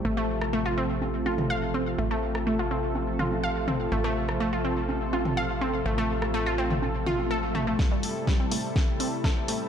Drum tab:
HH |----------------|----------------|----------------|----------------|
SD |---r------------|---r------------|---r------------|---r------------|
T2 |-----------o----|----------o---o-|-----------o----|-------o--o---o-|
CG |--------o-oo--o-|--------o-oo--o-|--------o-oo--o-|--------o-oo--o-|
BD |----------------|----------------|----------------|----------------|

HH |--o---o---o---o-|
SD |o---o---o---o---|
T2 |----------------|
CG |----------------|
BD |o---o---o---o---|